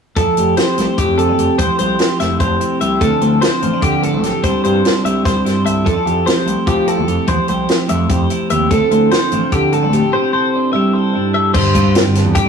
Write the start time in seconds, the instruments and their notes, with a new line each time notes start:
0.16 fingered electric bass F1, clean electric guitar F3 E4 A4, kick, closed hi-hat
0.37 fingered electric bass F1, clean electric guitar G4, closed hi-hat
0.57 clean electric guitar C4 C5, snare, closed hi-hat
0.78 fingered electric bass C2, clean electric guitar A3 E4, snare, closed hi-hat
0.98 fingered electric bass F2, clean electric guitar G4, kick, closed hi-hat
1.17 clean electric guitar C3 D4 A4, closed hi-hat
1.29 fingered electric bass F1, clean electric guitar E4
1.39 fingered electric bass F1, clean electric guitar G4, closed hi-hat
1.58 fingered electric bass E1, clean electric guitar F3 E4 C5, kick, closed hi-hat
1.79 fingered electric bass C2, clean electric guitar G4 C5, closed hi-hat
1.99 clean electric guitar C4, snare, closed hi-hat
2.20 fingered electric bass F1, clean electric guitar A3 E4 E5, snare, closed hi-hat
2.40 fingered electric bass F1, clean electric guitar G4 C5, kick, closed hi-hat
2.60 clean electric guitar C3 E4, closed hi-hat
2.81 fingered electric bass C2, clean electric guitar G4 E5, closed hi-hat
3.01 fingered electric bass D2, clean electric guitar D3 F3 C4 E4 A4, kick, closed hi-hat
3.21 fingered electric bass D2, clean electric guitar C5, closed hi-hat
3.42 clean electric guitar C4 C5, snare, closed hi-hat
3.62 fingered electric bass A1, clean electric guitar F3 D4, closed hi-hat
3.73 clean electric guitar E4
3.82 fingered electric bass D3, clean electric guitar G4 A4, kick, closed hi-hat
4.03 clean electric guitar A2 E4 A4, closed hi-hat
4.13 fingered electric bass D2
4.23 fingered electric bass B1, clean electric guitar G4, snare, closed hi-hat
4.43 fingered electric bass C2, clean electric guitar C3 G3 D4 E4 A4 C5, kick, closed hi-hat
4.64 fingered electric bass G2, clean electric guitar G4 C5, closed hi-hat
4.73 clean electric guitar A4
4.84 clean electric guitar D4, snare, closed hi-hat
5.04 fingered electric bass C2, clean electric guitar G3 E4 E5, closed hi-hat
5.25 fingered electric bass C2, clean electric guitar G4 C5, kick, snare, closed hi-hat
5.35 clean electric guitar A4
5.44 clean electric guitar G2 E4, snare, closed hi-hat
5.65 fingered electric bass C2, clean electric guitar A4 E5, closed hi-hat
5.84 fingered electric bass F2, clean electric guitar F3 D4 A4, kick, closed hi-hat
5.95 clean electric guitar E4
6.06 fingered electric bass F2, clean electric guitar G4, closed hi-hat
6.26 clean electric guitar C4 C5, snare, closed hi-hat
6.46 fingered electric bass C2, clean electric guitar A3 E4, closed hi-hat
6.66 fingered electric bass F3, clean electric guitar G4, kick, closed hi-hat
6.86 clean electric guitar C3 E4 A4, closed hi-hat
6.98 fingered electric bass F2
7.08 fingered electric bass F2, clean electric guitar G4, closed hi-hat
7.27 fingered electric bass E2, clean electric guitar F3 E4 C5, kick, closed hi-hat
7.48 fingered electric bass C2, clean electric guitar G4 C5, closed hi-hat
7.69 clean electric guitar C4, snare, closed hi-hat
7.88 fingered electric bass F2, clean electric guitar A3 E4 E5, closed hi-hat
8.09 fingered electric bass F2, clean electric guitar G4 C5, kick, closed hi-hat
8.30 clean electric guitar C3 E4, closed hi-hat
8.50 fingered electric bass D#2, clean electric guitar G4 E5, closed hi-hat
8.71 fingered electric bass D2, clean electric guitar D3 F3 C4 E4 A4, kick, closed hi-hat
8.91 fingered electric bass D2, clean electric guitar C5, closed hi-hat
9.11 clean electric guitar C4 C5, snare, closed hi-hat
9.32 fingered electric bass A1, clean electric guitar F3 E4, closed hi-hat
9.52 fingered electric bass D3, clean electric guitar G4 A4, kick, closed hi-hat
9.73 clean electric guitar A2 D4 A4, closed hi-hat
9.83 fingered electric bass D2, clean electric guitar E4
9.93 fingered electric bass D2, clean electric guitar G4, closed hi-hat
10.13 clean electric guitar C3 D4 C5
10.24 clean electric guitar E4
10.33 clean electric guitar A4 C5
10.56 clean electric guitar D4
10.73 clean electric guitar G3 E4 E5
10.93 clean electric guitar A4 C5
11.15 clean electric guitar G2 E4
11.34 clean electric guitar A4 E5
11.54 fingered electric bass G1, clean electric guitar G2 C5, kick, crash
11.75 fingered electric bass C2, clean electric guitar F4, kick, closed hi-hat
11.95 clean electric guitar G3 C4, snare, closed hi-hat
12.06 fingered electric bass G1
12.15 clean electric guitar A4, snare, closed hi-hat
12.25 fingered electric bass E2
12.35 clean electric guitar D4 G4, kick, closed hi-hat